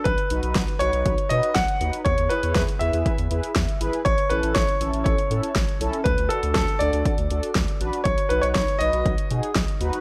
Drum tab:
HH |xxxxxxxxxxxxxxxx|xxxxxxxxxxxxxxxx|xxxxxxxxxxxxxxxx|xxxxxxxxxxxxxxxx|
SD |----o-------o---|----o-------o---|----o-------o---|----o-------o---|
BD |o---o---o---o---|o---o---o---o---|o---o---o---o---|o---o---o---o---|

HH |xxxxxxxxxxxxxxxx|
SD |----o-------o---|
BD |o---o---o---o---|